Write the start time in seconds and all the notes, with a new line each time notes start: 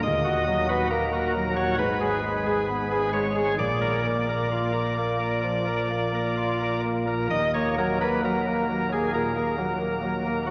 0.03 D#1 D#2 D#5
0.25 F#4
0.47 F#3
0.69 F#4 B4
0.90 A#3 A#4
1.12 F#4
1.35 F#3
1.56 F#4 C#5
1.78 G#1 G#2 B4
2.01 G#4
2.24 G#3
2.46 G#4
2.68 B3
2.91 G#4
3.13 G#3 C#5
3.35 G#4
3.58 A#1 A#2 D5
3.81 A#4
4.06 A#3
4.29 A#4
4.52 F4
4.73 A#4
4.98 A#3
5.20 A#4
5.44 F3
5.67 A#4
5.91 A#3
6.14 A#4
6.37 F4
6.61 A#4
6.84 A#3
7.07 A#4
7.30 D#1 D#2 D#5
7.54 A#3 C#5
7.78 F#3 A#4
8.01 A#3 B4
8.24 F#3 A#4
8.47 A#3
8.69 F#3
8.92 A#3 G#4
9.14 A#2 A#4
9.36 A#3
9.58 F#3
9.80 A#3
10.03 F#3
10.25 A#3
10.47 F#3 F#4